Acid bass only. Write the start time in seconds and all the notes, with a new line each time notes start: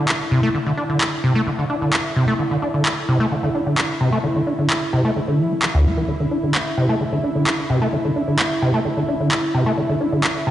0.31 C3
0.43 A3
0.54 D3
0.66 D3
0.77 D4
0.89 D3
1.24 C3
1.35 A3
1.47 D3
1.58 D3
1.70 D4
1.82 D3
2.16 C3
2.28 A3
2.39 D3
2.51 D3
2.62 D4
2.74 D3
3.08 C3
3.20 A3
3.31 D3
3.43 D3
3.55 D4
3.66 D3
4.01 C3
4.12 A3
4.24 D3
4.36 D3
4.47 D4
4.59 D3
4.93 C3
5.05 A3
5.16 D3
5.28 D3
5.39 F3
5.51 D4
5.74 D2
5.85 C4
5.97 E3
6.08 D3
6.20 D3
6.31 D4
6.43 D3
6.77 C3
6.89 A3
7.01 D3
7.12 D3
7.24 D4
7.35 D3
7.70 C3
7.82 A3
7.93 D3
8.05 D3
8.16 D4
8.28 D3
8.62 C3
8.74 A3
8.85 D3
8.97 D3
9.08 D4
9.20 D3
9.54 C3
9.66 A3
9.77 D3
9.89 D3
10.01 D4
10.12 D3
10.47 C3